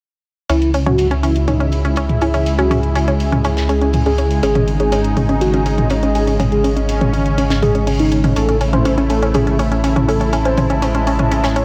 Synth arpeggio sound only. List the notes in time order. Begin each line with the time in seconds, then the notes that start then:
0.50 C#4
0.74 C#4
0.86 C#4
1.11 C#4
1.23 C#4
1.48 C#4
1.60 C#4
1.85 C#4
1.97 C#4
2.22 C#4
2.34 C#4
2.59 C#4
2.71 C#4
2.95 C#4
3.08 C#4
3.32 C#4
3.45 C#4
3.69 C#4
3.82 C#4
4.06 C#4
4.18 C#4
4.43 C#4
4.55 C#4
4.80 C#4
4.92 C#4
5.17 C#4
5.29 C#4
5.54 C#4
5.66 C#4
5.91 C#4
6.03 C#4
6.27 C#4
6.40 C#4
6.64 C#4
6.76 C#4
7.01 C#4
7.13 C#4
7.38 C#4
7.50 C#4
7.75 C#4
7.87 C#4
8.12 C#4
8.24 C#4
8.36 C#4
8.49 C#4
8.61 C#4
8.73 C#4
8.85 C#4
8.98 C#4
9.10 C#4
9.22 C#4
9.35 C#4
9.47 C#4
9.59 C#4
9.72 C#4
9.84 C#4
9.96 C#4
10.08 C#4
10.21 C#4
10.33 C#4
10.45 C#4
10.58 C#4
10.70 C#4
10.82 C#4
10.95 C#4
11.07 C#4
11.19 C#4
11.31 C#4
11.44 C#4
11.56 C#4